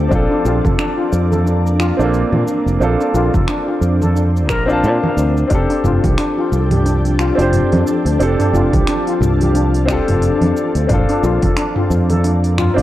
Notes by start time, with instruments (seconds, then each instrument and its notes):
Already playing: grand piano C4 D4 G4 A4, ambient pad D4
0.08 fingered electric bass A#1, grand piano C4 D4, kick, cabasa
0.12 ambient pad A#3, grand piano F4 A4
0.31 steel pan D4
0.45 fingered electric bass A#1, steel pan F4, cabasa
0.65 fingered electric bass F1, steel pan A4, kick, high conga, cabasa
0.79 steel pan D4, finger snap, cabasa
0.98 steel pan F4
1.12 fingered electric bass F2, cabasa
1.31 steel pan A4, high conga, cabasa
1.46 steel pan D4, cabasa
1.67 cabasa
1.80 steel pan F4, finger snap, cabasa
1.97 fingered electric bass A#1, grand piano C4 D4, steel pan A4, cabasa
2.01 grand piano A#3 F4
2.14 cabasa
2.32 fingered electric bass A#2, steel pan D4, high conga
2.48 cabasa
2.66 fingered electric bass F1, cabasa
2.80 fingered electric bass A#1, grand piano C4 D4 F4 A4, ambient pad C4, cabasa
3.00 steel pan D4, cabasa
3.14 fingered electric bass A#1, steel pan F4, cabasa
3.34 fingered electric bass F1, steel pan A4, kick, high conga, cabasa
3.48 steel pan D4, finger snap, cabasa
3.68 steel pan F4
3.81 fingered electric bass F2, cabasa
4.02 steel pan A4, high conga, cabasa
4.16 steel pan D4, cabasa
4.37 cabasa
4.49 fingered electric bass A#1, steel pan A#4, finger snap, kick, cabasa
4.66 grand piano C4 D4, steel pan A#4, cabasa
4.70 grand piano F4 A5
4.84 fingered electric bass A#2, cabasa
5.03 steel pan A#4, high conga
5.17 fingered electric bass D2, cabasa
5.37 cabasa
5.48 fingered electric bass F1, grand piano C4 D4, ambient pad G4, kick, open hi-hat, cabasa
5.52 ambient pad F3 D4 A4, grand piano G4 A4
5.70 steel pan D4, open hi-hat
5.84 fingered electric bass F1, steel pan F4, mid tom, cabasa
6.04 fingered electric bass C2, steel pan G4, kick, open hi-hat, high conga, cabasa
6.18 steel pan D4, finger snap, open hi-hat, cabasa
6.38 steel pan F4
6.52 fingered electric bass C2, cabasa
6.71 steel pan G4, mid tom, open hi-hat, high conga, cabasa
6.86 steel pan D4, open hi-hat, cabasa
7.05 open hi-hat, cabasa
7.19 steel pan F4, finger snap, cabasa
7.35 fingered electric bass F1, grand piano C4 D4, open hi-hat
7.39 steel pan F4, grand piano G4 C5, cabasa
7.53 mid tom, open hi-hat, cabasa
7.72 fingered electric bass F2, steel pan D4, open hi-hat, high conga
7.87 cabasa
8.05 fingered electric bass D2, open hi-hat, cabasa
8.19 fingered electric bass F1, grand piano C4 D4 G4 A4, ambient pad F4, open hi-hat, cabasa
8.39 steel pan D4, mid tom, open hi-hat, cabasa
8.53 fingered electric bass F1, steel pan F4, cabasa
8.73 fingered electric bass C2, steel pan G4, kick, open hi-hat, high conga, cabasa
8.87 steel pan D4, finger snap, open hi-hat, cabasa
9.07 steel pan F4, open hi-hat
9.20 fingered electric bass C2, mid tom, cabasa
9.41 steel pan G4, open hi-hat, high conga, cabasa
9.55 steel pan D4, open hi-hat, cabasa
9.74 open hi-hat, cabasa
9.85 grand piano C4 D4, steel pan F4, finger snap, kick
9.89 grand piano G4 A4, cabasa
10.08 fingered electric bass F1, steel pan F4, mid tom, open hi-hat, cabasa
10.22 open hi-hat, cabasa
10.41 fingered electric bass F2, steel pan D4, open hi-hat, high conga
10.57 cabasa
10.75 fingered electric bass D2, open hi-hat, cabasa
10.87 fingered electric bass A#1, ambient pad A#3 D4, grand piano C4 D4, kick, mid tom, open hi-hat, cabasa
10.91 grand piano F4 A4
11.09 steel pan D4, open hi-hat
11.23 fingered electric bass A#1, steel pan F4, cabasa
11.42 fingered electric bass F1, steel pan A4, kick, open hi-hat, high conga, cabasa
11.57 steel pan D4, finger snap, open hi-hat, cabasa
11.76 steel pan F4, mid tom
11.90 fingered electric bass F2, cabasa
12.10 steel pan A4, open hi-hat, high conga, cabasa
12.24 steel pan D4, open hi-hat, cabasa
12.44 open hi-hat, cabasa
12.58 steel pan F4, finger snap, mid tom, cabasa
12.74 fingered electric bass A#1, grand piano C4 D4, steel pan F4
12.78 grand piano F4, open hi-hat, cabasa